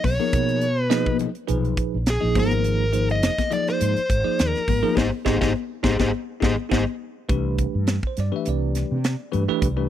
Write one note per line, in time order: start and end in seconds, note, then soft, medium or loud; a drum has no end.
0.04 0.17 B1 loud
0.04 0.82 C#5 medium
0.04 kick medium
0.04 open hi-hat medium
0.04 high conga medium
0.04 low conga medium
0.19 0.66 F3 medium
0.19 0.65 A#3 medium
0.19 0.65 D#4 medium
0.19 0.65 G#4 medium
0.19 0.65 A#4 medium
0.19 high conga medium
0.33 1.26 B2 medium
0.33 kick loud
0.33 closed hi-hat medium
0.49 closed hi-hat soft
0.61 closed hi-hat medium
0.82 1.17 B4 medium
0.90 1.28 F3 medium
0.90 1.29 A#3 medium
0.90 1.28 D#4 medium
0.90 1.28 G#4 medium
0.90 1.29 D#5 loud
0.90 snare loud
0.90 closed hi-hat medium
1.06 kick medium
1.06 high conga medium
1.19 closed hi-hat medium
1.19 low conga medium
1.35 closed hi-hat soft
1.47 1.72 B1 medium
1.47 1.96 A#2 medium
1.47 1.96 F3 medium
1.47 1.96 D#4 medium
1.47 1.96 G#4 medium
1.47 1.96 B4 medium
1.47 closed hi-hat medium
1.65 closed hi-hat soft
1.77 kick medium
1.77 closed hi-hat medium
1.94 2.17 A#1 medium
2.06 2.39 G#4 medium
2.06 snare loud
2.06 closed hi-hat medium
2.21 2.34 A#1 medium
2.21 2.35 F3 medium
2.21 2.35 A#3 medium
2.21 2.34 D#4 medium
2.21 2.34 G#4 medium
2.21 2.35 D#5 medium
2.35 3.28 G#1 medium
2.35 2.83 F3 medium
2.35 2.84 A#3 medium
2.35 2.83 D#4 medium
2.35 2.83 G#4 medium
2.35 3.07 A#4 medium
2.35 2.84 C5 medium
2.35 kick loud
2.35 open hi-hat medium
2.35 high conga medium
2.35 low conga medium
2.51 closed hi-hat soft
2.51 high conga medium
2.64 closed hi-hat medium
2.93 3.32 F3 medium
2.93 3.31 A#3 medium
2.93 3.31 D#4 medium
2.93 3.31 G#4 medium
2.93 3.32 C5 medium
2.93 closed hi-hat medium
3.09 3.53 D#5 loud
3.09 closed hi-hat soft
3.23 snare loud
3.23 closed hi-hat medium
3.38 kick medium
3.38 snare soft
3.38 closed hi-hat soft
3.38 high conga medium
3.51 3.99 F3 medium
3.51 3.99 A#3 medium
3.51 3.99 D#4 medium
3.51 3.99 G#4 medium
3.51 3.99 D5 medium
3.51 3.67 D5 medium
3.51 closed hi-hat medium
3.51 low conga medium
3.68 4.49 C5 medium
3.68 snare soft
3.68 closed hi-hat soft
3.81 3.94 G#2 medium
3.81 closed hi-hat medium
3.97 muted fretless electric bass stroke soft
3.97 closed hi-hat soft
4.10 4.22 G#1 loud
4.10 kick medium
4.10 closed hi-hat medium
4.24 4.62 F3 medium
4.24 4.62 A#3 medium
4.24 4.62 D#4 medium
4.24 4.62 G#4 medium
4.24 4.62 D5 medium
4.39 4.52 D#2 loud
4.39 snare loud
4.39 closed hi-hat medium
4.49 4.94 A#4 medium
4.55 muted fretless electric bass stroke soft
4.55 snare soft
4.55 closed hi-hat soft
4.68 4.81 G#1 medium
4.68 kick medium
4.68 open hi-hat medium
4.68 high conga medium
4.68 low conga medium
4.83 4.97 F3 medium
4.83 4.97 A#3 medium
4.83 4.94 D#4 medium
4.83 4.94 G#4 medium
4.83 4.97 A#4 loud
4.83 high conga medium
4.95 5.09 G#1 medium
4.95 5.06 D#4 medium
4.95 5.06 G4 medium
4.95 5.06 G#4 medium
4.95 5.08 G#4 medium
4.95 5.08 C5 medium
4.95 5.08 D#5 medium
4.95 kick medium
4.95 snare loud
4.95 high conga medium
5.25 5.38 G#1 medium
5.25 5.36 D#4 medium
5.25 5.36 G4 medium
5.25 5.35 G#4 medium
5.25 5.36 G#4 medium
5.25 5.36 C5 medium
5.25 5.36 D#5 medium
5.25 kick medium
5.25 snare medium
5.25 high conga loud
5.41 5.52 G#1 medium
5.41 5.50 D#4 medium
5.41 5.50 G4 medium
5.41 5.50 G#4 medium
5.41 5.50 C5 medium
5.41 5.50 D#5 loud
5.41 kick medium
5.41 snare medium
5.41 high conga medium
5.83 5.96 G#1 medium
5.83 5.94 D#4 medium
5.83 5.94 G4 medium
5.83 5.94 G#4 medium
5.83 5.94 C5 medium
5.83 5.95 D#5 medium
5.83 kick medium
5.83 snare medium
5.83 high conga medium
5.99 6.10 G#1 medium
5.99 6.08 D#4 medium
5.99 6.08 G4 medium
5.99 6.08 G#4 medium
5.99 6.09 G#4 loud
5.99 6.09 C5 medium
5.99 6.09 D#5 medium
5.99 kick medium
5.99 snare medium
5.99 high conga medium
6.40 6.54 G#1 medium
6.40 6.51 D#4 medium
6.40 6.52 G4 medium
6.40 6.51 G#4 medium
6.40 6.53 G#4 medium
6.40 6.53 C5 medium
6.40 6.53 D#5 medium
6.40 kick medium
6.40 snare medium
6.40 high conga loud
6.69 6.83 G#1 loud
6.69 6.80 D#4 medium
6.69 6.80 G4 medium
6.69 6.81 G#4 medium
6.69 6.82 G#4 medium
6.69 6.82 C5 medium
6.69 6.82 D#5 medium
6.69 kick medium
6.69 snare medium
6.69 high conga loud
7.29 7.65 C2 loud
7.29 7.95 E3 medium
7.29 7.95 A3 medium
7.29 7.95 D4 medium
7.29 7.95 G4 medium
7.29 7.95 B4 medium
7.29 kick loud
7.29 closed hi-hat medium
7.58 kick medium
7.58 closed hi-hat medium
7.75 7.98 G2 medium
7.87 snare loud
7.87 closed hi-hat medium
8.03 8.18 C5 medium
8.03 kick medium
8.17 8.30 G2 medium
8.17 8.34 D5 medium
8.17 snare soft
8.17 closed hi-hat medium
8.31 8.97 E3 medium
8.31 8.97 A3 medium
8.31 8.97 D4 medium
8.31 8.97 G4 medium
8.31 8.97 B4 medium
8.36 8.47 E5 medium
8.46 8.82 C2 medium
8.46 9.89 D5 medium
8.46 closed hi-hat medium
8.75 snare soft
8.75 closed hi-hat medium
8.91 9.14 C3 medium
9.04 snare loud
9.04 closed hi-hat medium
9.32 9.46 G2 medium
9.32 9.42 E3 medium
9.32 9.42 A3 medium
9.32 9.43 D4 medium
9.32 9.43 G4 medium
9.32 9.43 B4 medium
9.32 closed hi-hat medium
9.48 9.66 E3 medium
9.48 9.66 A3 medium
9.48 9.66 D4 medium
9.48 9.66 G4 medium
9.48 9.67 B4 loud
9.48 muted fretless electric bass stroke soft
9.62 9.85 C2 medium
9.62 kick loud
9.62 closed hi-hat medium
9.77 9.86 E3 medium
9.77 9.86 A3 medium
9.77 9.86 D4 medium
9.77 9.86 G4 medium
9.77 9.86 B4 medium